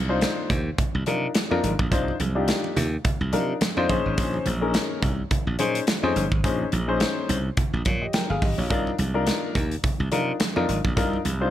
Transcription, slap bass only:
0.00 0.24 C2 medium
0.50 0.69 D#2 medium
0.95 1.03 C2 medium
1.07 1.26 C3 medium
1.51 1.60 F2 medium
1.63 1.74 G#1 medium
1.79 1.88 A#1 medium
1.92 2.11 C2 loud
2.20 2.50 C2 loud
2.77 2.96 D#2 medium
3.21 3.35 C2 medium
3.33 3.52 C3 medium
3.77 3.86 F2 medium
3.89 4.00 A#1 medium
4.06 4.14 G#1 medium
4.18 4.37 A#1 loud
4.46 4.76 A#1 medium
5.02 5.22 C2 medium
5.47 5.55 A#1 medium
5.60 5.79 A#2 medium
6.03 6.12 F2 medium
6.16 6.27 G1 medium
6.32 6.40 G#1 medium
6.44 6.64 A#1 loud
6.73 7.03 A#1 loud
7.29 7.49 C2 medium
7.73 7.82 A#1 medium
7.86 8.05 A#2 medium
8.30 8.38 G1 medium
8.42 8.53 G#1 medium
8.58 8.67 A#1 medium
8.70 8.90 C2 loud
8.99 9.29 C2 medium
9.55 9.75 D#2 medium
10.00 10.08 C2 loud
10.12 10.31 C3 medium
10.56 10.65 F2 medium
10.69 10.80 G#1 medium
10.85 10.93 A#1 medium
10.97 11.17 C2 loud
11.25 11.50 C2 loud

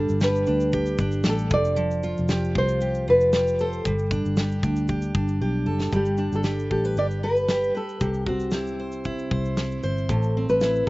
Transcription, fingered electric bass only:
0.10 0.44 G1 medium
0.48 0.96 D2 medium
0.99 1.23 G1 medium
1.26 1.49 A1 medium
1.51 2.13 F1 medium
2.19 2.53 F1 loud
2.56 3.10 C2 medium
3.09 3.82 F1 medium
3.85 4.22 G1 loud
4.26 4.60 G1 medium
4.63 5.11 D2 medium
5.15 5.39 G1 medium
5.41 5.65 B1 loud
5.66 5.91 F#1 medium
5.92 6.30 G1 medium
6.32 6.68 G1 medium
6.71 6.95 A1 medium
6.96 7.71 G1 medium
8.01 9.27 C2 medium
9.31 9.79 C2 medium
9.84 10.07 G1 medium
10.09 10.46 A1 medium
10.50 10.84 A1 medium

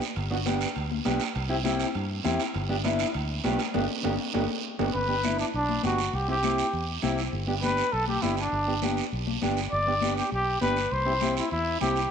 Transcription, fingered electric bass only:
0.17 0.64 G1 loud
0.76 1.00 D2 medium
1.06 1.18 B1 medium
1.36 1.83 C2 loud
1.95 2.19 G2 medium
2.25 2.37 E2 medium
2.55 3.03 G1 loud
3.15 3.39 D2 medium
3.45 3.57 B1 medium
3.75 3.86 G1 medium
4.05 4.16 G1 medium
4.35 4.46 G1 medium
4.80 4.91 G1 medium
4.95 5.42 G1 medium
5.54 5.78 B1 medium
5.84 6.08 G1 medium
6.13 6.61 C2 medium
6.73 6.97 E2 medium
7.03 7.27 C2 medium
7.33 7.81 G1 loud
7.93 8.17 B1 medium
8.23 8.47 G1 medium
8.52 9.00 G1 medium
9.13 9.36 B1 medium
9.43 9.67 G1 medium
9.73 10.20 G1 medium
10.32 10.56 B1 medium
10.62 10.86 G1 medium
10.92 11.40 C2 medium
11.52 11.76 E2 medium
11.82 12.06 C2 medium

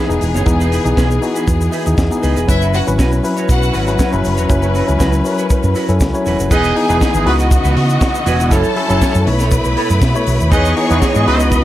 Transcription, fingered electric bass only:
0.09 0.19 E1 medium
0.22 0.35 E1 medium
0.35 0.44 F#1 medium
0.47 0.78 E1 medium
0.85 0.95 B1 medium
0.97 1.18 B1 medium
1.48 1.68 E2 loud
1.87 1.96 D#2 medium
1.98 2.09 E2 medium
2.24 2.34 C#2 medium
2.37 2.46 E1 medium
2.49 2.80 F#1 loud
2.88 2.97 G#1 medium
2.99 3.19 B1 loud
3.49 3.70 B1 loud
3.75 3.95 G#1 medium
4.14 4.23 F#1 loud
4.25 4.39 F#1 medium
4.39 4.48 E1 medium
4.50 4.81 F#1 loud
4.89 4.98 C#2 medium
5.00 5.21 C#2 medium
5.64 5.73 F#2 medium
5.89 5.98 F#2 medium
6.01 6.12 C#2 medium
6.26 6.37 E1 medium
6.40 6.49 F#1 medium
6.51 6.71 E1 loud
6.90 6.99 E1 loud
7.14 7.24 G#1 medium
7.26 7.57 C#2 medium
7.65 7.74 C#2 medium
7.76 7.97 C#3 loud
8.26 8.52 E1 loud
8.52 8.62 F#1 loud
8.90 8.99 F#1 medium
9.02 muted fingered electric bass stroke soft
9.15 9.25 F#2 medium
9.27 9.58 B1 loud
9.65 9.75 B1 medium
9.90 10.00 F#2 medium
10.02 10.12 B2 loud
10.27 10.38 B1 loud
10.41 10.52 D#2 medium
10.52 10.72 E2 medium
10.90 11.00 E2 loud
11.15 11.25 G#2 loud
11.27 11.58 C#2 loud

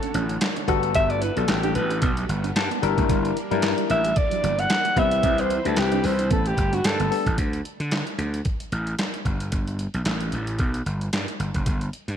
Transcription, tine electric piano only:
0.68 1.22 G3 medium
0.68 1.22 B3 medium
0.68 1.22 F#4 medium
0.68 1.22 A4 loud
1.36 1.85 G3 medium
1.36 1.85 B3 medium
1.36 1.85 F#4 medium
1.36 1.85 A4 medium
2.56 2.81 A5 medium
2.82 3.36 G3 medium
2.82 3.36 D4 medium
2.82 3.36 E4 medium
2.82 3.36 A#4 loud
2.82 3.07 E5 medium
3.51 3.99 G3 medium
3.51 3.99 D4 medium
3.51 3.99 E4 medium
3.51 4.00 A#4 loud
4.96 5.50 G3 medium
4.96 5.50 C4 medium
4.96 5.50 E4 medium
4.96 5.51 B4 medium
5.65 6.13 G3 medium
5.65 6.13 C4 medium
5.65 6.14 E4 medium
5.65 6.14 B4 medium
7.10 7.24 G3 medium
7.10 7.25 B3 medium
7.10 7.25 D4 medium
7.10 7.25 A4 medium

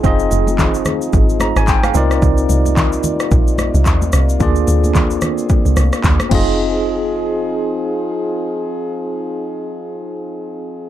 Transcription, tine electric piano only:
0.04 1.91 C4 medium
0.04 1.91 D#4 medium
0.04 1.92 F4 medium
0.04 1.92 G#4 medium
0.04 1.92 D#5 medium
1.41 1.56 A#5 medium
1.57 1.68 G#5 medium
1.69 1.83 G5 medium
1.84 2.10 F5 medium
1.94 4.09 C4 medium
1.94 4.09 D#4 medium
1.94 4.10 F4 medium
1.94 4.10 A#4 medium
1.94 4.10 D5 medium
4.40 6.27 A#3 medium
4.40 6.28 D4 medium
4.40 6.28 F4 medium
4.40 6.28 G#4 medium
4.40 6.29 D5 medium
6.29 10.89 C4 medium
6.29 10.89 D#4 medium
6.29 10.89 F4 medium
6.34 10.89 G#4 medium
6.34 10.89 D#5 medium

